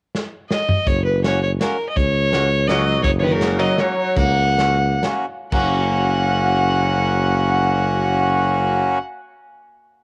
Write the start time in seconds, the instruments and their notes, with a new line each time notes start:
0.14 snare
0.50 fiddle D#5, snare
0.69 mid tom
0.87 tuba F#1, fiddle C#5, kick, closed hi-hat
1.05 fiddle B4
1.23 accordion A#3 C#4 F#4, fiddle C#5, snare, closed hi-hat
1.43 fiddle C#5
1.60 accordion A#3 C#4 F#4, fiddle A#4, snare, closed hi-hat
1.89 fiddle D#5
1.95 tuba C#2, fiddle C#5, kick, closed hi-hat
2.31 accordion A#3 C#4 F#4, snare, closed hi-hat
2.67 sitar F#3, accordion A#3 C#4 F#4, fiddle D#5, snare, closed hi-hat
3.03 tuba F#1, sitar F#3, fiddle C#5, kick, closed hi-hat
3.19 sitar F3, fiddle B4 C#5
3.23 sitar D#3
3.31 sitar C#3, fiddle A#4
3.39 accordion A#3 C#4 F#4, snare, closed hi-hat
3.59 sitar F#3, fiddle D#5
3.77 sitar F#3, accordion A#3 C#4 F#4, fiddle C#5, snare, closed hi-hat
4.16 tuba C#2, sitar A#3, fiddle F#5, kick, closed hi-hat
4.57 accordion A#3 C#4 F#4, snare, closed hi-hat
5.03 accordion A#3 C#4 F#4, snare, closed hi-hat
5.52 tuba F#1, sitar A#3, accordion A#3 C#4 F#4, fiddle F#5, kick, crash